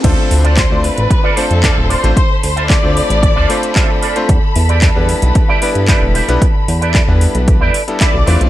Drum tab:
CC |x---------------|----------------|----------------|----------------|
HH |x-oxx-oxx-oxx-ox|x-oxx-oxx-oxx-ox|x-oxx-oxx-oxx-ox|x-oxx-oxx-oxx-ox|
CP |----x-------x---|----x-------x---|----x-------x---|----x-------x---|
BD |o---o---o---o---|o---o---o---o---|o---o---o---o---|o---o---o---o---|